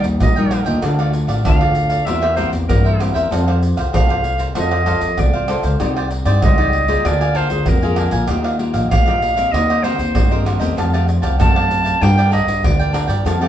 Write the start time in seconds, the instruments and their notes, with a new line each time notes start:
Already playing: nylon-string guitar D#3 G3 A#3 D#4
0.03 upright bass D#2, muted cavaquinho stroke, pandeiro, shaker, surdo
0.20 upright bass A#1, nylon-string guitar A#2, clarinet D#5, pandeiro, tamborim, shaker, surdo
0.36 nylon-string guitar G3 A#3 D#4, cavaquinho A#4 D#5 G5, pandeiro, shaker
0.51 cavaquinho G4 A#4 D#5 G5, pandeiro, tamborim, shaker
0.65 upright bass D#2, nylon-string guitar A3 D4 F4, cavaquinho A#4 D#5 G5, pandeiro, shaker, surdo
0.82 upright bass D2, nylon-string guitar D3, cavaquinho D4 A4 D5 F5, pandeiro, tamborim, shaker, surdo
0.99 nylon-string guitar A3 D4 F4, cavaquinho A4 D5 F5, pandeiro, tamborim, shaker
1.13 muted cavaquinho stroke, pandeiro, shaker
1.27 upright bass A1, cavaquinho A4 D5 F5, pandeiro, tamborim, shaker, surdo
1.44 upright bass D2, nylon-string guitar A2 A3 D4 F4, cavaquinho D4 A4 D5 F5, clarinet F5, pandeiro, tamborim, shaker, surdo
1.61 cavaquinho A4 D5 F5, pandeiro, tamborim, shaker
1.75 pandeiro, shaker
1.89 cavaquinho A4 D5 F5, pandeiro, shaker, surdo
2.06 upright bass E2, nylon-string guitar E3 A#3 C4 G4, cavaquinho E4 A#4 C5 E5, clarinet E5, pandeiro, tamborim, shaker, surdo
2.21 cavaquinho A#4 C5 E5, pandeiro, tamborim, shaker
2.36 nylon-string guitar A#3 C4 G4, cavaquinho E4 A#4 C5 E5, clarinet C5, pandeiro, tamborim, shaker, surdo
2.52 upright bass E2, muted cavaquinho stroke, pandeiro, shaker, surdo
2.68 upright bass G2, nylon-string guitar E3, clarinet A#4, pandeiro, tamborim, shaker, surdo
2.84 cavaquinho A#4 C5 E5, pandeiro, shaker
2.99 nylon-string guitar A#3 C4 G4, cavaquinho E4 A#4 C5 E5, pandeiro, tamborim, shaker
3.14 upright bass E2, cavaquinho A#4 C5 E5, pandeiro, shaker, surdo
3.31 upright bass F2, nylon-string guitar F3 F4 A4 C5, cavaquinho A4 C5 F5, pandeiro, tamborim, shaker, surdo
3.47 nylon-string guitar F4 A4 C5, cavaquinho C5 F5, pandeiro, tamborim, shaker
3.62 muted cavaquinho stroke, pandeiro, shaker
3.77 upright bass C2, cavaquinho C5 F5, pandeiro, tamborim, shaker, surdo
3.93 upright bass C2, nylon-string guitar C3 F4 A4 C5, cavaquinho A4 C5 F5, clarinet F5, pandeiro, tamborim, shaker, surdo
4.09 cavaquinho C5 F5, pandeiro, tamborim, shaker
4.24 pandeiro, shaker
4.38 cavaquinho C5 F5, pandeiro, shaker, surdo
4.55 upright bass F2, nylon-string guitar F3 F4 A4 C5, cavaquinho A4 C5 F5, clarinet D#5, pandeiro, tamborim, shaker, surdo
4.71 cavaquinho C5 F5, pandeiro, tamborim, shaker
4.86 nylon-string guitar F4 A4 C5, cavaquinho A4 C5 F5, pandeiro, tamborim, shaker, surdo
5.01 upright bass F2, muted cavaquinho stroke, pandeiro, shaker, surdo
5.18 upright bass C2, nylon-string guitar C3, clarinet D5, pandeiro, tamborim, shaker, surdo
5.33 cavaquinho C5 F5, pandeiro, shaker
5.48 nylon-string guitar F4 A4 C5, cavaquinho A4 C5 F5, pandeiro, tamborim, shaker
5.63 upright bass C#2, cavaquinho C5 F5, pandeiro, shaker, surdo
5.80 upright bass C2, nylon-string guitar C4 D#4 G4 D5, cavaquinho D#4 G4 C5 D5, pandeiro, tamborim, shaker, surdo
5.97 cavaquinho G4 C5 D5, pandeiro, tamborim, shaker
6.11 muted cavaquinho stroke, pandeiro, shaker
6.25 upright bass G2, nylon-string guitar D#4 G4 D5, cavaquinho G4 C5 D5, pandeiro, tamborim, shaker, surdo
6.42 upright bass C#2, nylon-string guitar G3, cavaquinho D#4 G4 C5 D5, clarinet D#5, pandeiro, tamborim, shaker, surdo
6.58 nylon-string guitar D#4 G4 D5, cavaquinho G4 C5 D5, pandeiro, tamborim, shaker
6.73 pandeiro
6.88 nylon-string guitar A#3 F4 G#4, cavaquinho G4 C5 D5, pandeiro, shaker, surdo
7.05 upright bass D2, nylon-string guitar D3, cavaquinho D4 A#4 F5 G#5, clarinet D5, pandeiro, tamborim, shaker, surdo
7.21 cavaquinho A#4 F5 G#5, pandeiro, tamborim, shaker
7.35 cavaquinho D4 A#4 F5 G#5, clarinet C5, pandeiro, tamborim, shaker, surdo
7.49 upright bass D2, nylon-string guitar A#3 F4 G#4, muted cavaquinho stroke, pandeiro, shaker, surdo
7.66 upright bass F2, nylon-string guitar D3, clarinet A#4, pandeiro, tamborim, shaker, surdo
7.82 nylon-string guitar A#3 F4 G#4, cavaquinho A#4 F5 G#5, pandeiro, shaker
7.96 cavaquinho D4 A#4 F5 G#5, pandeiro, tamborim
8.11 upright bass A#1, cavaquinho A#4 F5 G#5, pandeiro, shaker, surdo
8.28 upright bass D#2, nylon-string guitar D#3 A#3 F4 G4, cavaquinho G4 D#5 F5, pandeiro, tamborim, shaker, surdo
8.44 cavaquinho D#5 F5, pandeiro, tamborim, shaker
8.59 nylon-string guitar A#3 F4 G4, muted cavaquinho stroke, pandeiro
8.74 upright bass A#1, cavaquinho D#5 F5, pandeiro, tamborim, shaker, surdo
8.91 upright bass A#1, nylon-string guitar A#3, cavaquinho G4 D#5 F5, clarinet F5, pandeiro, tamborim, shaker, surdo
9.06 nylon-string guitar A#3 F4 G4, cavaquinho D#5 F5, pandeiro, tamborim, shaker
9.22 pandeiro, shaker
9.36 nylon-string guitar A#3 C4 G4, cavaquinho D#5 F5, pandeiro, shaker, surdo
9.52 upright bass D#2, nylon-string guitar D#3, cavaquinho D#4 A#4 C5 D#5, clarinet D#5, pandeiro, tamborim, shaker, surdo
9.69 cavaquinho A#4 C5 D#5, pandeiro, tamborim, shaker
9.83 nylon-string guitar A#3 C4 G4, cavaquinho D#4 A#4 C5 D#5, clarinet C5, pandeiro, tamborim, shaker
9.98 upright bass D#2, muted cavaquinho stroke, pandeiro, shaker, surdo
10.15 upright bass G2, nylon-string guitar D#3, pandeiro, tamborim, shaker, surdo
10.31 nylon-string guitar A#3 C4 G4, cavaquinho A#4 C5 D#5, pandeiro, shaker
10.45 cavaquinho D#4 A#4 C5 D#5, pandeiro, tamborim, shaker
10.59 upright bass E2, nylon-string guitar A3 C4 G4, cavaquinho A#4 C5 D#5, pandeiro, shaker, surdo
10.77 upright bass F2, nylon-string guitar F3, cavaquinho G4 A4 F5 A5, pandeiro, tamborim, shaker, surdo
10.93 nylon-string guitar A3 C4 G4, cavaquinho G4 F5 A5, pandeiro, tamborim, shaker
11.08 muted cavaquinho stroke, pandeiro, shaker
11.22 upright bass C2, cavaquinho G4 F5 A5, pandeiro, tamborim, shaker, surdo
11.39 upright bass F#2, nylon-string guitar C3 A3 C4 G4, cavaquinho G4 A4 F5 A5, clarinet A5, pandeiro, tamborim, shaker, surdo
11.55 cavaquinho G4 F5 A5, pandeiro, tamborim, shaker
11.71 pandeiro, shaker
11.84 cavaquinho G4 F5 A5, pandeiro, shaker, surdo
12.01 upright bass G2, nylon-string guitar G3 D4 G4 A#4, cavaquinho D4 A#4 D5 G5, clarinet G5, pandeiro, tamborim, shaker, surdo
12.17 cavaquinho A#4 D5 G5, pandeiro, tamborim, shaker
12.30 cavaquinho D4 A#4 D5 G5, nylon-string guitar G4 A#4, clarinet D#5, pandeiro, tamborim, surdo
12.46 upright bass G2, muted cavaquinho stroke, pandeiro, shaker, surdo
12.63 upright bass D2, nylon-string guitar D3, clarinet D5, pandeiro, tamborim, shaker, surdo
12.79 cavaquinho A#4 D5 G5, pandeiro, shaker
12.92 cavaquinho D4 A#4 D5 G5, nylon-string guitar D4 G4 A#4, pandeiro, tamborim, shaker
13.08 upright bass G2, cavaquinho A#4 D5 G5, pandeiro, shaker, surdo
13.25 upright bass F2, nylon-string guitar F3 C4 G4 A4, cavaquinho G4 A4 F5 A5, pandeiro, tamborim, shaker, surdo
13.41 nylon-string guitar C4 G4 A4, cavaquinho G4 F5 A5, pandeiro, tamborim, shaker